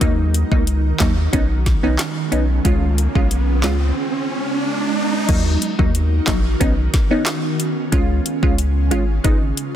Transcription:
Already playing: ambient pad D#4
0.01 analog synth bass D#2, ambient pad D#3 F#4 A#4, synth stab F#3 A#3 D#4, kick, closed hi-hat, riser
0.34 closed hi-hat
0.51 analog synth bass C#2, synth stab F#3 A#3 D#4, kick
0.67 closed hi-hat
1.00 analog synth bass D#2, synth stab F#3 A#3 D#4, kick, snare, clap, closed hi-hat
1.33 analog synth bass B1, ambient pad D#3 B3 C#4, synth stab B3 C#4 D#4, kick, closed hi-hat
1.66 kick, snare, closed hi-hat
1.83 analog synth bass B1, synth stab B3 C#4 D#4
1.99 snare, clap, closed hi-hat
2.32 analog synth bass B1, synth stab B3 C#4 D#4, closed hi-hat
2.65 analog synth bass C#2, ambient pad C#3 F4 G#4, synth stab G#3 C#4 F4, kick, closed hi-hat
2.98 closed hi-hat
3.15 analog synth bass B1, synth stab G#3 C#4 F4, kick
3.31 closed hi-hat
3.64 analog synth bass C#2, synth stab G#3 C#4 F4, snare, clap, closed hi-hat
3.97 ambient pad G#3 B3 D#4
5.28 analog synth bass D#2, ambient pad D#3 D#4 F#4 A#4, synth stab F#3 A#3 D#4, kick, closed hi-hat, crash
5.62 closed hi-hat
5.79 analog synth bass D#2, synth stab F#3 A#3 D#4, kick
5.95 closed hi-hat
6.27 analog synth bass A#1, synth stab F#3 A#3 D#4, kick, snare, clap, closed hi-hat
6.60 analog synth bass B1, synth stab B3 C#4 D#4, ambient pad B3 C#4, kick, closed hi-hat
6.94 kick, snare, closed hi-hat
7.11 synth stab B3 C#4 D#4
7.26 snare, clap, closed hi-hat
7.60 closed hi-hat
7.92 analog synth bass C#2, ambient pad C#3 F4 G#4, synth stab G#3 C#4 F4, kick, closed hi-hat
8.26 closed hi-hat
8.43 analog synth bass C#2, synth stab G#3 C#4 F4, kick
8.58 closed hi-hat
8.91 analog synth bass G#1, synth stab G#3 C#4 F4, closed hi-hat
9.24 analog synth bass G#1, synth stab G#3 B3 D#4, ambient pad G#3 B3 D#4, kick, closed hi-hat
9.57 closed hi-hat

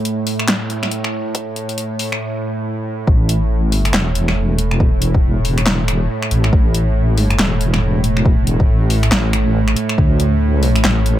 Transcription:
Already playing: synth drone A2
0.05 closed hi-hat
0.27 open hi-hat
0.39 finger snap
0.48 snare, clap, closed hi-hat
0.70 closed hi-hat
0.83 finger snap, snare
0.91 closed hi-hat
1.04 finger snap
1.35 kick, closed hi-hat
1.56 closed hi-hat
1.69 closed hi-hat
1.78 closed hi-hat
1.99 open hi-hat
2.12 finger snap
3.07 wobble bass A1, synth drone A2, kick
3.29 closed hi-hat
3.67 wobble bass G#1
3.72 open hi-hat
3.85 finger snap, closed hi-hat
3.94 wobble bass E1, snare, clap
4.15 closed hi-hat
4.28 finger snap, snare
4.37 wobble bass E1
4.58 closed hi-hat
4.71 finger snap
4.80 kick
5.02 closed hi-hat
5.14 kick
5.23 wobble bass E1
5.45 open hi-hat
5.58 finger snap, closed hi-hat
5.66 snare, clap
5.88 finger snap, closed hi-hat
6.22 finger snap
6.31 wobble bass A1, closed hi-hat
6.44 finger snap
6.53 wobble bass A1, kick
6.74 closed hi-hat
7.13 wobble bass G#1
7.18 open hi-hat
7.30 finger snap, closed hi-hat
7.39 wobble bass E1, snare, clap
7.61 closed hi-hat
7.74 finger snap, snare
7.82 wobble bass E1
8.04 closed hi-hat
8.17 finger snap
8.25 kick
8.47 closed hi-hat
8.60 kick
8.69 wobble bass A1
8.90 open hi-hat
9.03 finger snap, closed hi-hat
9.12 wobble bass A1, snare, clap
9.33 finger snap, closed hi-hat
9.68 finger snap
9.76 closed hi-hat
9.89 finger snap
9.98 wobble bass D2, kick
10.20 closed hi-hat
10.63 open hi-hat
10.76 finger snap, closed hi-hat
10.84 wobble bass A1, snare, clap
11.06 closed hi-hat

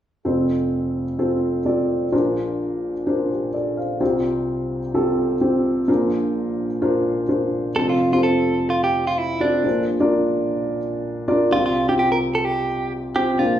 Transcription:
0.25 upright piano F1 F2 C4 F4 A4 C5
1.19 upright piano C4 F4 A4 C5
1.65 upright piano C4 F4 A4 D5
2.12 upright piano A#1 A#2 D4 F4 A#4 C5
3.07 upright piano D4 F4 A#4 C5
3.30 upright piano G4 C5
3.54 upright piano A4 D5
3.77 upright piano C5 F5
4.00 upright piano C2 C3 C4 F4 G4 C5
4.94 upright piano C4 F4 G4 A4
5.41 upright piano C4 F4 G4 C5
5.88 upright piano A#1 A#2 D4 F4 A#4 C5
6.82 upright piano D4 F4 A#4 C5
7.29 upright piano D4 F4 A#4 C5
7.76 upright piano F1 F2 C4 F4 A4 C5, clean electric guitar A4
7.89 clean electric guitar F4
8.12 upright piano C4 F4 G4 C5, clean electric guitar F4
8.18 upright piano A4
8.23 clean electric guitar A4
8.70 clean electric guitar F4
8.84 clean electric guitar G4
9.07 clean electric guitar F4
9.18 clean electric guitar E4
9.40 upright piano C4 F4 A4 D5, clean electric guitar D4
9.64 upright piano A#1 A#2 D4 F4 A#4 C5
10.00 upright piano D4 F4 A#4 D5
11.28 upright piano D4 F4 A#4 D5
11.52 upright piano C2 C3 C4 F4 G4 C5, clean electric guitar F4
11.66 clean electric guitar F4
11.88 upright piano C4 F4 G4 C5, clean electric guitar G4
11.99 clean electric guitar G4
12.12 clean electric guitar A#4
12.35 clean electric guitar A4
12.45 clean electric guitar G4
13.16 upright piano C4 F4 G4 C5, clean electric guitar G4
13.39 upright piano A#1 A#2 D4 F4 A#4 C5, clean electric guitar F4

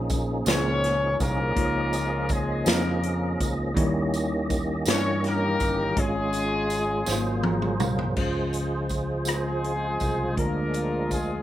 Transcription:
Already playing: fingered electric bass A#1, tine electric piano A#2 A#3 C#4 G#4 C5, tonewheel organ F3 A#3 C#4 D#4 G#4
0.10 kick, closed hi-hat, tambourine
0.45 fingered electric bass C#2, tine electric piano A#3 C#4 G#4 C5, snare, closed hi-hat, tambourine
0.49 horn section C#4 F4 G#4 C#5
0.55 tine electric piano C#5
0.84 snare, closed hi-hat
1.20 fingered electric bass C2, horn section A#3 D#4 F4 A#4, kick, closed hi-hat, tambourine
1.55 fingered electric bass C#2, tine electric piano C#3 A#3 D#4 F4 C#5, tonewheel organ A#3 D#5, kick, closed hi-hat
1.93 closed hi-hat, tambourine
2.29 horn section G#3 G#4, kick, closed hi-hat, tambourine
2.65 fingered electric bass F2, tine electric piano A#3 D#4 F4 D#5, horn section A#3 D#4 A#4, snare, closed hi-hat, tambourine
2.69 horn section F4
3.03 closed hi-hat
3.40 fingered electric bass C#2, kick, closed hi-hat, tambourine
3.74 fingered electric bass D#2, tine electric piano D#3 G3 D#4 E4 C#5, tonewheel organ D#3 C#4 G4, kick, closed hi-hat
4.14 closed hi-hat, tambourine
4.50 kick, closed hi-hat, tambourine
4.85 fingered electric bass G2, tine electric piano E3 D#4 E4 C#5, snare, closed hi-hat, tambourine
4.89 tine electric piano G3, horn section C#4 C#5
5.24 horn section A#3 C#4 G4 A#4, snare, closed hi-hat
5.60 fingered electric bass G1, kick, closed hi-hat, tambourine
5.96 fingered electric bass G#1, tine electric piano G#2 G#3 C#4 F4 C#5, tonewheel organ G#3 F4, horn section G#3 C#4 G#4, kick, closed hi-hat
6.00 horn section F4
6.33 closed hi-hat, tambourine
6.70 closed hi-hat, tambourine
7.05 fingered electric bass G#1, tine electric piano G#2 F#3 A#3 F4 C5, tonewheel organ F#3 A#3 G#4 C5, snare, tambourine
7.43 tine electric piano A#5, high tom
7.62 mid tom
7.80 fingered electric bass C2, tine electric piano F5, mid tom, tambourine
7.99 floor tom
8.16 fingered electric bass C#2, tine electric piano C#3 G#3 C#4 F4 C5, tonewheel organ F3 G#3 F4 G#4 C5, kick, crash
8.53 closed hi-hat, tambourine
8.89 kick, closed hi-hat, tambourine
9.25 tine electric piano C#3 G#3 F4 C5, cross-stick, closed hi-hat, tambourine
9.30 horn section G#3 C4 F4 G#4
9.35 tine electric piano C5
9.64 closed hi-hat
10.00 fingered electric bass C2, kick, closed hi-hat, tambourine
10.36 fingered electric bass D2, tine electric piano D3 G#3 D4 F4 A#4, tonewheel organ A#3 D4 G#4, horn section A#3 F4 A#4, kick, closed hi-hat
10.74 closed hi-hat, tambourine
11.11 horn section G#3 G#4, kick, closed hi-hat, tambourine

